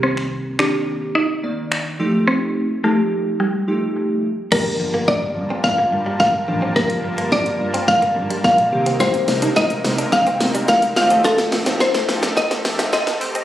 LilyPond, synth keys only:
\new Staff \with { instrumentName = "Synth keys" } { \time 4/4 \key g \minor \tempo 4 = 107 <ees bes c' g'>8 r8 <ees bes c' g'>4 r8 <ees bes c' d''>4 <f a ees' g'>8~ | <f a ees' g'>8 r8 <f a ees' g'>4 r8 <f a ees' g'>4 r8 | <f bes d' g'>4. r2 <f bes d' g'>8 | <f bes d' g'>4. r2 <ees bes c' g'>8~ |
<ees bes c' g'>4 r2 r8 <ees a c' f'>8~ | <ees a c' f'>4 r2 r8 <ees a c' g'>8 | }